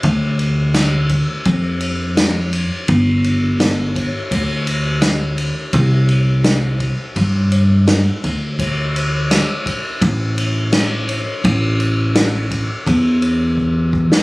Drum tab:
RD |x-x-x-x-x-x-x-x-|x-x-x-x-x-x-x-x-|x-x-x-x-x-x-x-x-|x-x-x-x-x-x-x-x-|
SD |----o-------o---|----o-------o---|----o-------o---|----o-------o---|
BD |o-----o-o-------|o-----o-o-------|o-----o-o-------|o-----o-o-------|

RD |x-x-x-x-x-x-----|
SD |----o----------o|
BD |o-----o-o---o-o-|